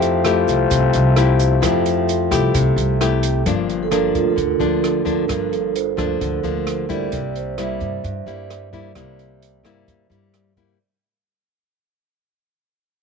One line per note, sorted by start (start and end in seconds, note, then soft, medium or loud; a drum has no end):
0.00 0.44 F2 medium
0.00 0.69 F3 soft
0.00 3.23 F3 loud
0.00 0.22 A3 soft
0.00 0.22 E4 medium
0.00 0.22 G4 medium
0.00 1.59 A4 soft
0.00 1.60 E5 soft
0.00 1.61 G5 medium
0.00 closed hi-hat soft
0.00 shaker soft
0.25 1.13 A3 medium
0.25 1.14 E4 medium
0.25 1.14 G4 medium
0.25 cross-stick medium
0.25 closed hi-hat soft
0.25 shaker medium
0.48 0.69 C2 medium
0.48 closed hi-hat soft
0.48 shaker medium
0.71 0.92 C2 medium
0.71 1.60 C3 medium
0.71 kick medium
0.71 closed hi-hat medium
0.71 shaker medium
0.93 1.59 C2 loud
0.93 closed hi-hat soft
0.93 shaker soft
1.16 1.59 A3 medium
1.16 1.59 E4 medium
1.16 1.59 G4 medium
1.16 cross-stick medium
1.16 closed hi-hat soft
1.16 shaker medium
1.39 closed hi-hat soft
1.39 shaker medium
1.61 2.27 F2 medium
1.61 2.52 F3 soft
1.61 2.27 A3 medium
1.61 2.27 E4 soft
1.61 2.28 G4 medium
1.61 3.41 A4 soft
1.61 3.42 E5 soft
1.61 3.43 G5 medium
1.61 kick medium
1.61 cross-stick medium
1.61 closed hi-hat medium
1.61 shaker medium
1.86 closed hi-hat soft
1.86 shaker soft
2.09 closed hi-hat soft
2.09 shaker medium
2.31 2.53 C2 medium
2.31 2.96 A3 medium
2.31 2.96 E4 medium
2.31 2.97 G4 medium
2.31 kick medium
2.31 cross-stick medium
2.31 closed hi-hat soft
2.31 shaker medium
2.54 2.76 C2 medium
2.54 3.44 C3 soft
2.54 kick medium
2.54 closed hi-hat medium
2.54 shaker medium
2.76 3.41 C2 medium
2.76 closed hi-hat soft
2.76 shaker soft
3.01 3.43 A3 medium
3.01 3.43 E4 medium
3.01 3.43 G4 medium
3.01 cross-stick medium
3.01 closed hi-hat soft
3.23 closed hi-hat soft
3.23 shaker medium
3.46 4.11 G1 medium
3.46 4.35 G2 soft
3.46 3.88 F3 soft
3.46 3.88 A#3 soft
3.46 3.88 D4 medium
3.46 kick medium
3.46 closed hi-hat soft
3.69 closed hi-hat soft
3.83 3.93 A4 medium
3.91 4.37 F3 medium
3.91 4.37 A#3 medium
3.91 4.37 D4 medium
3.91 4.04 A#4 medium
3.91 cross-stick medium
3.91 closed hi-hat soft
4.06 4.16 D4 medium
4.15 4.36 D2 medium
4.15 4.26 F4 medium
4.15 kick medium
4.15 closed hi-hat soft
4.29 4.39 A4 soft
4.36 4.59 D2 medium
4.36 5.26 D3 medium
4.36 4.50 A#4 medium
4.36 kick medium
4.36 closed hi-hat soft
4.51 4.57 D4 medium
4.60 5.25 D2 medium
4.60 5.02 F3 medium
4.60 5.02 A#3 medium
4.60 5.02 D4 medium
4.60 closed hi-hat soft
4.84 cross-stick medium
4.84 closed hi-hat soft
5.05 5.25 F3 medium
5.05 5.25 A#3 medium
5.05 5.25 D4 medium
5.05 5.49 A#4 medium
5.05 kick soft
5.05 closed hi-hat soft
5.28 5.94 G1 medium
5.28 6.18 G2 soft
5.28 5.74 F3 soft
5.28 5.74 A#3 soft
5.28 5.75 D4 soft
5.28 kick medium
5.28 cross-stick medium
5.28 closed hi-hat soft
5.52 5.74 A4 medium
5.52 closed hi-hat soft
5.75 6.40 C5 medium
5.75 closed hi-hat soft
5.97 6.19 D2 medium
5.97 6.39 F3 medium
5.97 6.40 A#3 medium
5.97 6.40 D4 medium
5.97 kick soft
5.97 cross-stick medium
5.97 closed hi-hat soft
6.21 6.42 D2 medium
6.21 7.10 D3 medium
6.21 kick medium
6.21 closed hi-hat soft
6.44 7.08 D2 medium
6.44 6.86 F3 medium
6.44 6.86 A#3 medium
6.44 6.86 D4 medium
6.44 7.09 A#4 medium
6.44 closed hi-hat soft
6.67 cross-stick medium
6.67 closed hi-hat soft
6.89 7.54 G3 medium
6.89 7.54 A#3 medium
6.89 7.54 E4 medium
6.89 7.33 D5 medium
6.89 kick medium
6.89 closed hi-hat soft
7.12 7.77 C2 medium
7.12 8.02 C3 soft
7.12 kick medium
7.12 closed hi-hat soft
7.35 7.58 C5 medium
7.35 closed hi-hat soft
7.58 8.04 G3 medium
7.58 8.04 A#3 medium
7.58 8.04 E4 medium
7.58 cross-stick medium
7.58 closed hi-hat soft
7.63 8.25 E5 medium
7.80 8.02 G2 medium
7.80 kick soft
7.80 closed hi-hat soft
8.04 8.93 G2 medium
8.04 8.25 G2 medium
8.04 kick medium
8.04 closed hi-hat soft
8.27 8.69 G3 medium
8.27 8.69 A#3 medium
8.27 8.69 E4 medium
8.27 8.93 D5 medium
8.27 closed hi-hat soft
8.50 cross-stick medium
8.50 closed hi-hat soft
8.73 8.92 G3 medium
8.73 8.92 A#3 medium
8.73 8.92 E4 medium
8.73 kick soft
8.73 closed hi-hat soft
8.95 9.60 C2 medium
8.95 9.85 C3 soft
8.95 9.61 G3 soft
8.95 9.61 A#3 medium
8.95 9.61 E4 medium
8.95 kick medium
8.95 cross-stick medium
8.95 closed hi-hat soft
9.19 closed hi-hat soft
9.42 closed hi-hat soft
9.63 9.85 G2 medium
9.63 10.06 G3 medium
9.63 10.07 A#3 medium
9.63 10.07 E4 medium
9.63 cross-stick medium
9.63 closed hi-hat soft
9.87 10.76 G2 soft
9.87 10.09 G2 medium
9.87 kick medium
9.87 closed hi-hat soft
10.10 10.75 G2 medium
10.10 10.52 G3 medium
10.10 10.53 A#3 medium
10.10 10.53 E4 medium
10.10 closed hi-hat soft
10.34 cross-stick medium
10.34 closed hi-hat soft
10.57 10.78 G3 medium
10.57 10.78 A#3 medium
10.57 10.78 E4 medium
10.57 kick soft
10.57 closed hi-hat soft